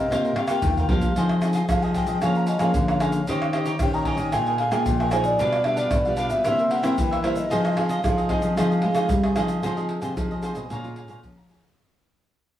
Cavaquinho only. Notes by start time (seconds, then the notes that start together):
0.00 A#4
0.11 F4 A#4 C5 F5
0.25 A#4 C5 F5
0.37 F4 A#4 C5 F5
0.49 F4 A#4 C5 F5
0.77 A#4 C5 F5
0.89 F4 A#4 C5 F5
1.17 F4 G#4 C5 D#5
1.43 F4 G#4 C5 D#5
1.55 F4 G#4 C5 D#5
1.84 G#4 C5 D#5
1.94 F4 G#4 C5 D#5
2.08 G#4 C5 D#5
2.23 G#4 C#5 F5 A#5
2.37 C#5 F5 A#5
2.48 G#4 C#5 F5 A#5
2.59 G#4 C#5 F5 A#5
2.89 C#5 F5 A#5
3.00 G#4 C#5 F5 A#5
3.28 D#4 G4 C#5 D#5
3.53 D#4 G4 C#5 D#5
3.66 D#4 G4 C#5 D#5
3.95 G4 C#5 D#5
4.05 D#4 G4 C#5 D#5
4.17 G4 C#5 D#5
4.32 G#4 A#4 D#5 G#5
4.47 A#4 D#5 G#5
4.59 G#4 A#4 D#5 G#5
4.71 G#4 A#4 D#5 G#5
5.00 A#4 D#5 G#5
5.11 G#4 A#4 D#5 G#5
5.39 D4 G4 B4 F5
5.65 D4 G4 B4 F5
5.76 D4 G4 B4 F5
6.06 G4 B4 F5
6.17 D4 G4 B4 F5
6.29 G4 B4 F5
6.44 E4 A#4 C5 E5
6.58 A#4 C5 E5
6.70 E4 A#4 C5 E5
6.83 E4 A#4 C5 E5
7.11 A#4 C5 E5
7.22 E4 A#4 C5 E5
7.50 F4 G#4 C5 D#5
7.76 F4 G#4 C5 D#5
7.89 F4 G#4 C5 D#5
8.18 G#4 C5 D#5
8.30 F4 G#4 C5 D#5
8.43 G#4 C5 D#5
8.57 F4 G#4 C5 D#5
8.71 G#4 C5 D#5
8.83 F4 G#4 C5 D#5
8.95 F4 G#4 C5 D#5
9.24 G#4 C5 D#5
9.36 F4 G#4 C5 D#5
9.63 F4 G#4 C5 D#5
9.77 G#4 C5 D#5
10.01 F4 G#4 C5 D#5
10.32 G#4 C5 D#5
10.43 F4 G#4 C5 D#5
10.56 G#4 C5 D#5
10.70 G#4 C#5 F5 A#5
10.97 G#4 C#5 F5 A#5
11.09 G#4 C#5 F5 A#5
11.37 C#5 F5 A#5
11.50 G#4 C#5 F5 A#5
11.63 C#5 F5 A#5